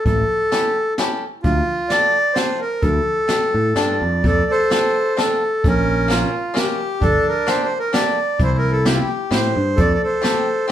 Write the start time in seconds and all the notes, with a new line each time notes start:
0.06 A1 A4, kick, closed hi-hat
0.52 C#4 E4 G4 A4, snare, closed hi-hat
0.98 C#4 E4 G4 A4, snare, closed hi-hat
1.43 D2 F4, kick, closed hi-hat
1.89 C4 D4 F4 A4 D5, snare, closed hi-hat
2.34 C4 D4 F4 A4 C5, snare, closed hi-hat
2.61 A#4
2.81 D2 A4, kick, closed hi-hat
3.28 C4 D4 F4 A4, snare, closed hi-hat
3.54 A2
3.76 G2 C4 D4 F4 A4 D5, snare, closed hi-hat
4.02 F2
4.24 F2 A4 D5, kick, closed hi-hat
4.50 A4 C5
4.70 C4 D4 F4 A4, snare, closed hi-hat
5.17 C4 D4 F4 A4, snare, closed hi-hat
5.64 A#1 C#4 A#4, kick, closed hi-hat
6.08 A#3 C#4 F4 A#4, snare, closed hi-hat
6.54 A#3 C#4 F4 G4 A#4, snare, closed hi-hat
7.01 G1 D4 A4, kick, closed hi-hat
7.29 A#4
7.47 A#3 D4 G4 A4 C5, snare, closed hi-hat
7.63 C5
7.79 A#4
7.93 A#3 D4 G4 A4 D5, snare, closed hi-hat
8.40 C2 E4 C5, kick, closed hi-hat
8.58 A#4
8.72 A4
8.85 C4 E4 G4 C5, snare, closed hi-hat
8.91 F4
9.01 G4
9.31 A2 C4 E4 G4 C5, snare, closed hi-hat
9.56 G2
9.76 F2 A4 D5, kick, closed hi-hat
9.94 D5
10.03 A4 C5
10.22 C4 F4 G4 A4, snare, closed hi-hat
10.68 C4 F4